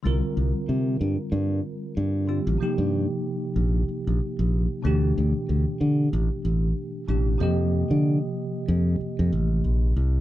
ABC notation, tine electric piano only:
X:1
M:4/4
L:1/8
Q:"Swing 16ths" 1/4=94
K:Cm
V:1 name="Tine electric piano"
[D,G,CFB]6- [D,G,CFB] [D,G,CFG] | [C,F,B,EG]6- [C,F,B,EG] [=B,,=E,=A,DG]- | [=B,,=E,=A,DG]6 [B,,E,A,DG] [C,F,_B,G_e]- | [C,F,B,Ge]6- [C,F,B,Ge] z |]